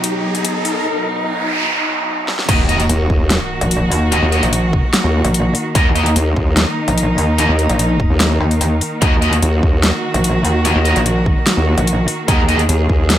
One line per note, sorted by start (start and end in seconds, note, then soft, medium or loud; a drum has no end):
0.00 2.45 B2 medium
0.00 2.45 F#3 medium
0.00 2.45 D#4 medium
0.00 closed hi-hat medium
0.00 riser medium
0.35 closed hi-hat medium
0.45 closed hi-hat medium
0.65 open hi-hat medium
0.85 noise sweep medium
2.28 snare medium
2.39 snare medium
2.49 2.88 D#2 loud
2.49 13.18 D#3 medium
2.49 2.60 A#3 medium
2.49 13.18 A#3 medium
2.49 5.74 F#4 medium
2.49 2.60 F#4 medium
2.49 2.60 D#5 medium
2.49 kick loud
2.49 closed hi-hat medium
2.49 crash loud
2.49 impact medium
2.69 2.81 A#3 medium
2.69 2.81 F#4 medium
2.69 2.81 D#5 loud
2.69 closed hi-hat medium
2.80 closed hi-hat medium
2.89 3.08 D#2 loud
2.89 closed hi-hat medium
3.10 3.39 D#2 loud
3.10 kick medium
3.30 snare loud
3.30 closed hi-hat medium
3.61 3.90 A#1 loud
3.61 closed hi-hat medium
3.71 closed hi-hat medium
3.92 4.21 D#2 loud
3.92 open hi-hat loud
4.12 4.24 A#3 loud
4.12 4.24 F#4 medium
4.12 4.24 D#5 medium
4.12 closed hi-hat medium
4.22 4.41 D#2 loud
4.32 4.44 A#3 medium
4.32 4.44 F#4 medium
4.32 4.44 D#5 loud
4.32 closed hi-hat medium
4.43 4.82 A#1 loud
4.43 closed hi-hat medium
4.53 closed hi-hat medium
4.73 kick medium
4.94 snare loud
4.94 closed hi-hat medium
5.04 5.23 D#2 loud
5.25 5.53 A#1 loud
5.25 closed hi-hat medium
5.34 closed hi-hat medium
5.55 open hi-hat loud
5.75 6.14 D#2 loud
5.75 5.87 A#3 loud
5.75 9.01 D#4 medium
5.75 5.87 F#4 medium
5.75 5.87 D#5 medium
5.75 kick loud
5.75 closed hi-hat medium
5.95 6.07 A#3 medium
5.95 6.07 F#4 medium
5.95 6.07 D#5 loud
5.95 closed hi-hat medium
6.06 closed hi-hat medium
6.16 6.35 D#2 loud
6.16 closed hi-hat medium
6.36 6.66 D#2 loud
6.36 kick medium
6.57 snare loud
6.57 closed hi-hat medium
6.88 7.16 A#1 loud
6.88 closed hi-hat medium
6.98 closed hi-hat medium
7.18 7.47 D#2 loud
7.18 open hi-hat medium
7.38 7.50 A#3 medium
7.38 7.50 F#4 medium
7.38 7.50 D#5 medium
7.38 closed hi-hat medium
7.49 7.68 D#2 loud
7.59 closed hi-hat medium
7.69 8.09 A#1 loud
7.69 closed hi-hat medium
7.79 closed hi-hat medium
8.00 kick medium
8.10 8.39 D#2 loud
8.20 snare loud
8.20 closed hi-hat medium
8.41 8.59 D#2 loud
8.51 closed hi-hat medium
8.61 8.80 D#2 loud
8.61 closed hi-hat medium
8.81 open hi-hat medium
9.01 9.41 D#2 loud
9.01 9.13 A#3 medium
9.01 12.27 F#4 medium
9.01 9.13 F#4 medium
9.01 9.13 D#5 medium
9.01 kick loud
9.01 closed hi-hat medium
9.22 9.34 A#3 medium
9.22 9.34 F#4 medium
9.22 9.34 D#5 loud
9.22 closed hi-hat medium
9.33 closed hi-hat medium
9.43 9.61 D#2 loud
9.43 closed hi-hat medium
9.63 9.92 D#2 loud
9.63 kick medium
9.83 snare loud
9.83 closed hi-hat medium
10.14 10.43 A#1 loud
10.14 closed hi-hat medium
10.24 closed hi-hat medium
10.45 10.74 D#2 loud
10.45 open hi-hat medium
10.65 10.77 A#3 loud
10.65 10.77 F#4 medium
10.65 10.77 D#5 medium
10.65 closed hi-hat medium
10.76 10.94 D#2 loud
10.85 10.97 A#3 medium
10.85 10.97 F#4 medium
10.85 10.97 D#5 loud
10.85 closed hi-hat medium
10.96 11.35 A#1 loud
10.96 closed hi-hat medium
11.06 closed hi-hat medium
11.26 kick medium
11.47 snare loud
11.47 closed hi-hat medium
11.57 11.76 D#2 loud
11.78 12.06 A#1 loud
11.78 closed hi-hat medium
11.87 closed hi-hat medium
12.08 open hi-hat loud
12.28 12.67 D#2 loud
12.28 12.40 A#3 loud
12.28 12.40 F#4 medium
12.28 13.18 G#4 medium
12.28 12.40 D#5 loud
12.28 kick loud
12.28 closed hi-hat medium
12.48 12.60 A#3 medium
12.48 12.60 F#4 medium
12.48 12.60 D#5 medium
12.48 closed hi-hat medium
12.59 closed hi-hat medium
12.69 12.88 D#2 loud
12.69 closed hi-hat medium
12.89 13.18 D#2 loud
12.89 kick medium
13.10 snare loud
13.10 closed hi-hat medium